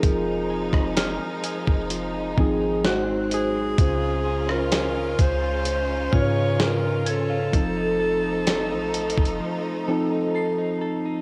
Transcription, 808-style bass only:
X:1
M:4/4
L:1/16
Q:1/4=64
K:Fphr
V:1 name="808-style bass" clef=bass
F,,,3 F,,,2 z2 F,,,3 A,,,6 | D,,6 D,,4 A,,6 | F,,,4- F,,, =A,,,2 F,,, z8 |]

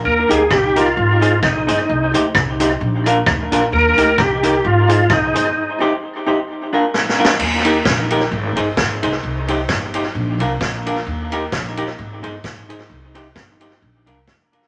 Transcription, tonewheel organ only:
X:1
M:4/4
L:1/8
Q:"Swing" 1/4=131
K:Eb
V:1 name="Tonewheel organ"
B A G F3 E E- | E z6 z | B2 G2 F2 E E- | E z6 z |
z8 | z8 | z8 | z8 |]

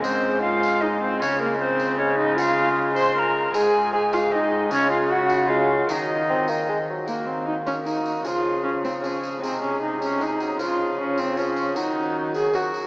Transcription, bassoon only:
X:1
M:3/4
L:1/8
Q:1/4=154
K:Db
V:1 name="Bassoon" clef=bass
A,4 A,2 | A,4 A,2 | A,6 | A,2 A,2 A,2 |
A,3 z A,2 | G,2 C B, A, G, | B,4 B,2 | F,4 F,2 |
A,4 A, G, | F,4 F,2 | G,4 G,2 |]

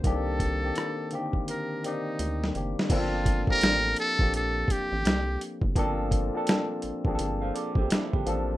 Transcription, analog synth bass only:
X:1
M:4/4
L:1/16
Q:"Swing 16ths" 1/4=84
K:Cphr
V:1 name="Analog synth bass" clef=bass
C,,4 z8 =D,,2 _G,,, z | [K:Gphr] G,,,3 =A,,, A,,,2 z B,,,3 A,,, A,,, C,,2 z _G,,, | G,,,3 z3 =A,,, A,,, G,,,2 z B,,, z G,,, A,,,2 |]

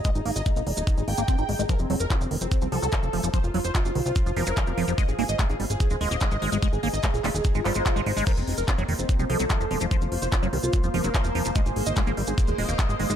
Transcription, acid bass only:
X:1
M:4/4
L:1/16
Q:1/4=146
K:none
V:1 name="Acid bass" clef=bass
_A, z _B, z A, z G, z2 A, B, B, C _E A, A, | F, z _G, z F z _E, z2 F, F, G, F, F, F, F, | F, z _G, z F z _E, z2 F, F, G, F, F, F, F, | _A, z _B, z A, z G, z2 A, A, B, A, A, A, A, |
_A, z _B, z A, z G, z2 A, G, A, A, A, A, A, | F, z3 F _G, _E, z2 F, F, G, F, F, F, F, | F, z3 F _G, _E, z2 F, F, G, F, F, F, F, | _A, z3 A, _B, G, z2 A, A, B, A, A, A, A, |]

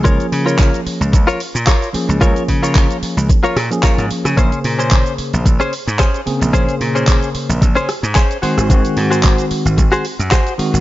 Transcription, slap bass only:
X:1
M:4/4
L:1/16
Q:"Swing 16ths" 1/4=111
K:Db
V:1 name="Slap bass" clef=bass
D,, z D,3 z2 D,, D,, z2 B,, z3 D,, | D,, z D,3 z2 D,, z2 B,, z2 A,, z D, | B,,, z B,,3 z2 B,,, B,,, z2 A,, z3 B,,, | z2 B,,3 z2 B,,, B,,, z2 A,, z3 A,,, |
A,,, z A,,3 z2 A,,, A,,, z2 G,, z3 A,,, |]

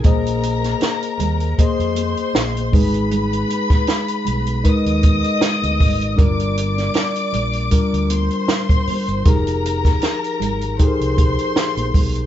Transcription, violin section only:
X:1
M:4/4
L:1/8
Q:"Swing 16ths" 1/4=78
K:Ablyd
V:1 name="Violin section"
[Bb]4 [cc']3 [_c_c']- | [_c_c']4 [ee']4 | [dd']4- [dd'] [cc']3 | [Bb]4 [cc']4 |]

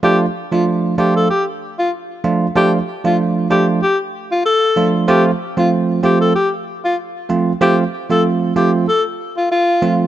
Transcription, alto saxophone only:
X:1
M:4/4
L:1/16
Q:"Swing 16ths" 1/4=95
K:Dm
V:1 name="Alto saxophone"
G z2 F z2 G A G z2 F z4 | G z2 F z2 G z G z2 F A3 z | G z2 F z2 G A G z2 F z4 | G z2 A z2 G z A z2 F F3 z |]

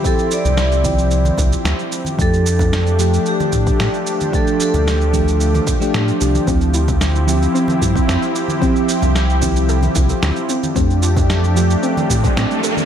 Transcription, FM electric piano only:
X:1
M:4/4
L:1/16
Q:1/4=112
K:Dm
V:1 name="FM electric piano"
[F,CEG]6 [F,CEG] z8 z | [F,A,DG]6 [F,A,DG] z8 z | [F,A,DG]6 [F,A,DG] z4 [F,A,DG] z2 [F,A,DG]2 | [F,CEG]6 [F,CEG] z8 z |
[F,CEG]6 [F,CEG] z8 z | [F,A,DG]6 [F,A,DG] z8 z |]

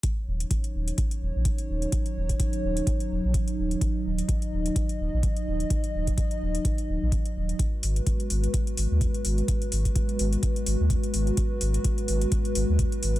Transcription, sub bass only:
X:1
M:4/4
L:1/16
Q:"Swing 16ths" 1/4=127
K:Ebm
V:1 name="Sub bass" clef=bass
z2 E,,, z3 E,,, z3 E,,, B,,, z2 E,,, z | z2 E,,, z3 E,,, z3 E,,, B,,, z2 E,,, z | z2 E,,, z3 E,,, z3 E,,, B,,, z2 E,,, z | z2 E,,, z3 E,,, z3 E,,, B,,, z2 E,,, z |
z2 A,,, z3 A,,, z3 A,,, E,, z2 A,,, z | z2 A,,, z3 A,,, z3 A,,, E,, z2 A,,, z | z2 A,,, z3 A,,, z3 A,,, E,, z2 A,,, z |]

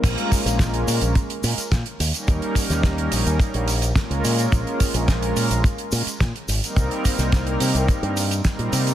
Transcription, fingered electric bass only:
X:1
M:4/4
L:1/16
Q:1/4=107
K:Bbdor
V:1 name="Fingered electric bass" clef=bass
B,,, z2 B,,,3 B,, B,,, z2 B,, z B,, z E,, z | E,, z2 E,,3 B,,, E,, z B,,,3 z D,, B,,2 | B,,, z2 B,,,3 B,, B,,, z2 B,, z B,, z A,,, z | C,, z2 C,,3 C, C,, z G,,3 z B,, C,2 |]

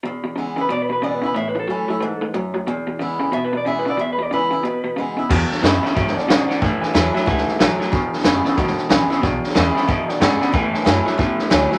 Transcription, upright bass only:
X:1
M:4/4
L:1/8
Q:"Swing" 1/4=183
K:Emix
V:1 name="Upright bass" clef=bass
z8 | z8 | z8 | z8 |
E,, z F,, z G,, z B,, z | A,, z E,, z C,, z A,,, z | E,,, z F,,, z G,,, z A,,, z | B,,, z E,, z F,, z G,, z |
A,, z F,, z E,, z D,, z |]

